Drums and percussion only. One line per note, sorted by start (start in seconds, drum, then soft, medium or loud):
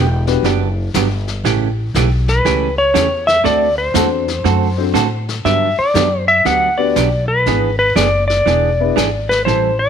0.27 snare soft
0.44 brush sweep soft
0.44 snare soft
0.94 snare medium
0.94 hi-hat pedal medium
1.27 snare soft
1.45 brush sweep soft
1.45 snare medium
1.95 snare medium
1.95 hi-hat pedal medium
2.28 snare soft
2.45 brush sweep medium
2.45 snare soft
2.95 snare medium
2.95 hi-hat pedal medium
3.28 snare soft
3.45 brush sweep medium
3.45 snare medium
3.95 snare medium
3.95 hi-hat pedal medium
4.28 snare soft
4.45 brush sweep medium
4.45 snare soft
4.95 snare medium
4.95 hi-hat pedal medium
5.28 snare soft
5.45 brush sweep soft
5.45 snare soft
5.95 snare medium
5.95 hi-hat pedal medium
6.45 brush sweep medium
6.45 snare soft
6.96 snare medium
6.96 hi-hat pedal medium
7.46 brush sweep medium
7.46 snare soft
7.96 snare medium
7.96 hi-hat pedal medium
8.30 snare soft
8.47 brush sweep medium
8.47 snare soft
8.97 snare medium
8.97 hi-hat pedal medium
9.31 snare soft
9.48 brush sweep soft
9.48 snare soft